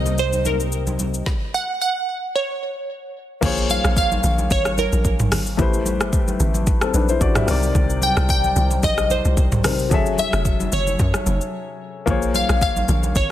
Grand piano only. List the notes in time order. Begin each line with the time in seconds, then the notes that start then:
Already playing: C3 C4 D#4 A#4 D#5
3.41 A#3 F4 G#4 C5
3.45 C#5
5.57 A3 E4 G4 B4
5.61 C5
6.82 C4 A4
6.94 D4 B4
7.09 E4 C5
7.21 F#4 D5
7.36 G4 E5
7.46 C3 C4 D#4 A#4
7.51 D5
9.64 C3 C4 D#4 A#4 C5
9.90 F#3 C#4 G#4 A4
9.94 E5
12.06 A#3 F4 G#4 C5
12.10 C#5